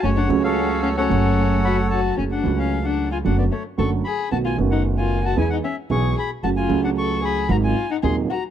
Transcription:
<<
  \new Staff \with { instrumentName = "Bandoneon" } { \time 4/4 \key fis \minor \tempo 4 = 113 << { gis''16 fis''8 eis''8. eis''16 fis''4~ fis''16 b''8 a''8 | gis''16 fis''8 eis''8 fis''8 gis''16 fis''16 d''16 cis''8 cis'''8 b''8 | a''16 gis''8 fis''8 gis''8 a''16 gis''16 fis''16 e''8 cis'''8 b''8 | a''16 gis''8 fis''16 cis'''8 b''8 ais''16 gis''8 fis''16 bis''8 ais''8 | } \\ { cis''8. <a' cis''>4 <a' cis''>2 r16 | r1 | r1 | r1 | } >> }
  \new Staff \with { instrumentName = "Violin" } { \time 4/4 \key fis \minor cis'16 d'8 cis'8. cis'16 cis'4~ cis'16 fis'8 fis'8 | cis'16 d'8 cis'8 d'8 eis'16 d'16 b16 a8 a'8 gis'8 | fis'16 eis'8 dis'8 eis'8 fis'16 e'16 dis'16 cis'8 gis'8 gis'8 | fis'16 eis'8 d'16 a'8 gis'8 fis'16 eis'8 dis'16 gis'8 fis'8 | }
  \new Staff \with { instrumentName = "String section" } { \time 4/4 \key fis \minor <a cis' fis'>8 <a cis' fis'>4. <a cis' fis'>2 | r1 | r1 | r1 | }
  \new Staff \with { instrumentName = "Upright piano" } { \clef bass \time 4/4 \key fis \minor <fis, cis fis a fis'>8 <cis, cis fis a fis'>4. <fis, cis fis a fis'>2 | <fis, cis fis a fis'>8 <cis, cis fis a fis'>4. <fis, d fis a fis'>8 r8 <fis, d fis a fis'>8 r8 | <b,, b, dis a b fis'>8 <fis,, fis, dis a b fis'>4. <e, e gis b gis'>8 r8 <b,, b, e gis b gis'>8 r8 | <fis, cis fis a fis'>8 <cis, cis fis a fis'>4. <gis,, gis, bis, fis gis dis'>8 r8 <dis,, dis, bis, fis gis dis'>8 r8 | }
  \new Staff \with { instrumentName = "Upright bass" } { \clef bass \time 4/4 \key fis \minor fis,,8 cis,4. fis,,2 | fis,,8 cis,4. fis,,8 r8 fis,,8 r8 | b,,8 fis,,4. e,8 r8 b,,8 r8 | fis,,8 cis,4. gis,,8 r8 dis,8 r8 | }
>>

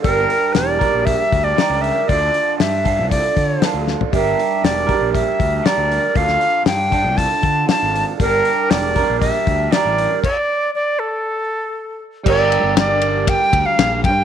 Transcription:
<<
  \new Staff \with { instrumentName = "Flute" } { \time 4/4 \key g \dorian \tempo 4 = 118 bes'4 d''4 e''8. d''8. e''8 | d''4 e''4 d''4. r8 | e''4 d''4 e''4 d''4 | f''4 g''4 a''4 a''8. r16 |
bes'4 d''4 e''4 d''4 | d''4 d''8 a'2 r8 | d''4 d''4 g''8. f''8. g''8 | }
  \new Staff \with { instrumentName = "Clean electric guitar" } { \time 4/4 \key g \dorian <g d' g' bes'>4. <g d' g' bes'>4. <g d' g' bes'>4 | <d d' f' a'>4. <d d' f' a'>4. <d d' f' a'>4 | <g d' g' bes'>4. <g d' g' bes'>4. <g d' g' bes'>4 | <d d' f' a'>4. <d d' f' a'>4. <d d' f' a'>4 |
<g d' g' bes'>4. <g d' g' bes'>4. <g d' g' bes'>4 | r1 | <g d' g' bes'>1 | }
  \new Staff \with { instrumentName = "Fingered electric bass" } { \clef bass \time 4/4 \key g \dorian g,,8 r8 e,,8. bes,,8 r16 d,8 r16 cis,8 r16 | d,8 r8 g,8. c,8 r16 d8 r16 d,8 r16 | g,,8 r8 e,,8. bes,,8 r16 d,8 r16 d,8 r16 | d,8 r8 g,8. c,8 r16 d8 r16 aes,,8 r16 |
g,,8 r8 e,,8. bes,,8 r16 d,8 r16 a,,8 r16 | r1 | g,,8. g,,4.~ g,,16 d,16 r16 bes,,8 g,8 | }
  \new DrumStaff \with { instrumentName = "Drums" } \drummode { \time 4/4 <hho bd>8 hho8 <hho sn>8 <hho bd>8 <hho bd>8 <hho bd>8 <hho sn>8 hho8 | <hho bd>8 hho8 <hho sn>8 <hho bd>8 <hho bd>8 <hho bd>8 <hho sn>8 sn16 tomfh16 | <hho bd>8 hho8 <hho sn>8 <hho bd>8 <hho bd>8 <hho bd>8 <hho sn>8 hho8 | <hho bd>16 sn16 hho8 <hho sn>8 <hho bd>8 <hho bd>8 <hho bd>8 <hho sn>8 hho8 |
<hho bd>8 hho8 <hho sn>8 <hho bd>8 <hho bd>8 <hho bd>8 <hho sn>8 hho8 | <cymc bd>4 r4 r4 r4 | <cymc bd>8 cymr8 <cymr sn>8 cymr8 <bd cymr>8 <bd cymr>8 <cymr sn>8 <bd cymr>8 | }
>>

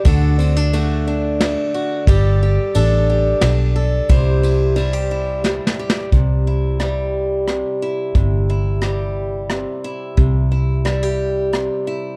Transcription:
<<
  \new Staff \with { instrumentName = "Steel-string acoustic guitar" } { \time 3/4 \key c \major \tempo 4 = 89 << { <d' fis' a'>8 c'16 d'16 fis'8 d'4 fis'8 | <g' a'>8 g'8 a'8 g'4 a'8 | <e' g' c''>8 e'8 e'16 g'16 e'4 g'8 | r8 e'8 g'4. e'8 |
r8 e'8 g'4. e'8 | r8 e'8 e'16 g'4~ g'16 e'8 | } \\ { d4 a4 a4 | g4 d'4 d'4 | c4 g4 g4 | c4 g4 c4 |
c4 g4 c4 | c4 g4 c4 | } >> }
  \new Staff \with { instrumentName = "Fingered electric bass" } { \clef bass \time 3/4 \key c \major d,2. | g,,4 a,,4 b,,4 | c,2. | c,2. |
g,,2. | c,2. | }
  \new DrumStaff \with { instrumentName = "Drums" } \drummode { \time 3/4 <bd cymr>8 cymr8 cymr4 <cymr sn>4 | <bd cymr>4 cymr4 <cymr sn>4 | <bd cymr>8 cymr8 cymr4 \tuplet 3/2 { sn8 sn8 sn8 } | <hh bd>4 <hh ss>4 <hh ss>4 |
<hh bd>4 <hh ss>4 <hh ss>4 | <hh bd>4 <hh ss>4 <hh ss>4 | }
>>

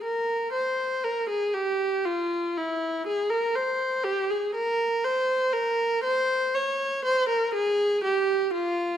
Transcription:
\new Staff \with { instrumentName = "Viola" } { \time 3/4 \key bes \dorian \tempo 4 = 60 bes'8 c''8 bes'16 aes'16 g'8 f'8 e'8 | aes'16 bes'16 c''8 g'16 aes'16 bes'8 c''8 bes'8 | c''8 des''8 c''16 bes'16 aes'8 g'8 f'8 | }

